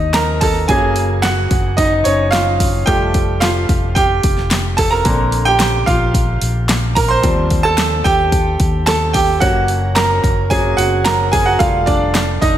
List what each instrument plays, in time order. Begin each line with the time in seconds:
Already playing: fingered electric bass D#2, grand piano F3 G3 C4 D#4 G4 D#5 G5
0.14 grand piano A#4 A#5, snare, clap, open hi-hat
0.41 grand piano A4 A5, kick, open hi-hat
0.68 fingered electric bass F#1, grand piano C#3 F#3 A#3 G#4 G#5, kick, open hi-hat
0.96 open hi-hat
1.22 grand piano F#4 F#5, snare, clap, open hi-hat
1.51 fingered electric bass F#1, kick, open hi-hat
1.77 grand piano D#4 D#5, kick, open hi-hat
2.04 fingered electric bass F#1, grand piano C#4 C#5, open hi-hat
2.31 grand piano F4 F5, snare, clap, open hi-hat
2.60 kick, open hi-hat
2.86 fingered electric bass F1, grand piano F3 G3 A3 G4 G5, kick, open hi-hat
3.14 kick, open hi-hat
3.40 grand piano F4 F5, snare, clap, open hi-hat
3.69 fingered electric bass F1, kick, open hi-hat
3.95 grand piano G4 G5, kick, open hi-hat
4.23 fingered electric bass F1, kick, open hi-hat
4.37 snare
4.51 snare, clap, open hi-hat
4.77 grand piano A4 A5, kick, open hi-hat
4.91 grand piano A#4 A#5
5.05 fingered electric bass A#1, grand piano D3 A#3 C4, kick, open hi-hat
5.32 open hi-hat
5.45 grand piano G4 G5
5.60 snare, clap, open hi-hat
5.86 fingered electric bass A#1, grand piano F4 F5, kick, open hi-hat
6.14 kick, open hi-hat
6.42 fingered electric bass A#1, open hi-hat
6.69 snare, clap, open hi-hat
6.95 grand piano A#4 A#5, kick, open hi-hat
7.08 grand piano C5 C6
7.22 fingered electric bass D#2, grand piano F3 G3 C4, kick, open hi-hat
7.50 kick, open hi-hat
7.63 grand piano A4 A5
7.78 snare, clap, open hi-hat
8.04 fingered electric bass D#2, grand piano G4 G5, kick, open hi-hat
8.32 kick, open hi-hat
8.60 fingered electric bass D#2, kick, open hi-hat
8.86 grand piano A4 A5, snare, clap, open hi-hat
9.13 grand piano G4 G5, kick, open hi-hat
9.40 fingered electric bass F#1, grand piano F#3 A#3 C#4 F#4 F#5, kick, open hi-hat
9.68 open hi-hat
9.95 grand piano A#4 A#5, snare, clap, open hi-hat
10.24 fingered electric bass F#1, kick, open hi-hat
10.50 grand piano F#3 A#3 C#4 G#4 G#5, kick, open hi-hat
10.77 fingered electric bass F#1, grand piano F#4 F#5, open hi-hat
11.05 grand piano A#4 A#5, snare, clap, open hi-hat
11.32 grand piano G#4 G#5, kick, open hi-hat
11.46 grand piano F#4 F#5
11.59 fingered electric bass F1, grand piano G3 A3 F4 F5, kick, open hi-hat
11.86 grand piano D4 D5, kick, open hi-hat
12.15 snare, clap, open hi-hat
12.41 fingered electric bass F1, grand piano D#4 D#5, kick, open hi-hat